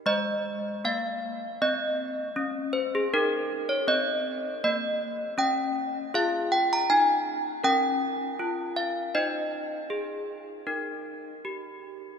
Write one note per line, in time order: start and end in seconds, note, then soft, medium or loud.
0.06 0.67 G#3 medium
0.06 2.72 C5 medium
0.06 0.80 D#5 loud
0.85 1.45 A#3 medium
0.85 1.57 F5 loud
1.62 2.21 C4 medium
1.62 2.70 D#5 loud
2.36 2.96 C#4 medium
2.73 2.92 C5 loud
2.95 3.12 G#4 loud
3.14 3.73 D#4 medium
3.14 3.67 A#4 loud
3.69 3.87 C#5 loud
3.88 4.47 C4 medium
3.88 4.60 D#5 loud
4.64 5.23 A#3 medium
4.64 5.35 D#5 loud
5.38 5.98 C#4 medium
5.38 6.11 G5 loud
6.14 6.74 F4 loud
6.14 7.59 G#4 medium
6.14 6.50 F5 loud
6.52 6.70 G5 loud
6.73 6.90 A#5 loud
6.90 7.49 D#4 medium
6.90 7.60 G#5 loud
7.64 8.23 C#4 medium
7.64 9.11 A#4 medium
7.64 8.73 G5 loud
8.39 9.00 F4 medium
8.76 9.13 F5 loud
9.15 9.76 D#4 medium
9.15 10.64 C5 medium
9.15 11.41 D#5 loud
9.90 10.52 G#4 medium
10.67 11.29 D#4 medium
10.67 12.18 A#4 soft
11.45 12.07 G4 medium